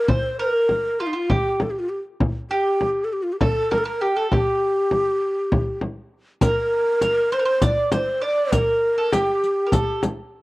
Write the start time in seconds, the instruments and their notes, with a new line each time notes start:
Already playing: ney A#4
0.08 mandolin C5, ney C5, frame drum
0.40 mandolin A#4, ney A#4
0.69 frame drum
1.00 mandolin F4, ney F4
1.07 ney D#4
1.13 mandolin F4, ney F4
1.30 mandolin G4, ney G4, frame drum
1.60 ney A4, frame drum
1.70 ney G4
1.79 ney F4
1.89 ney G4
2.20 frame drum
2.51 ney G4, mandolin G4
2.81 frame drum
3.04 ney A4
3.13 ney G4
3.23 ney F4
3.33 ney G4
3.40 ney A4, mandolin A4, frame drum
3.71 mandolin A#4, ney A#4, frame drum
3.78 ney A4
3.85 ney A#4, mandolin A#4
4.01 mandolin G4, ney G4
4.16 ney A4, mandolin A4
4.31 ney G4, mandolin G4, frame drum
4.91 frame drum
5.52 frame drum
5.81 frame drum
6.41 mandolin A#4, ney A#4, riq, frame drum
7.01 mandolin A#4, riq, frame drum
7.32 mandolin C5, ney C5, riq
7.39 mandolin A#4
7.45 mandolin C5
7.62 mandolin D5, ney D5, riq, frame drum
7.92 mandolin C5, ney C5, riq, frame drum
8.21 mandolin D5, ney D5
8.52 mandolin A#4, ney A#4, riq, frame drum
8.98 mandolin A4
9.12 mandolin G4, ney G4, riq, frame drum
9.44 riq
9.66 mandolin A#4
9.72 mandolin A4, riq, frame drum
10.03 riq, frame drum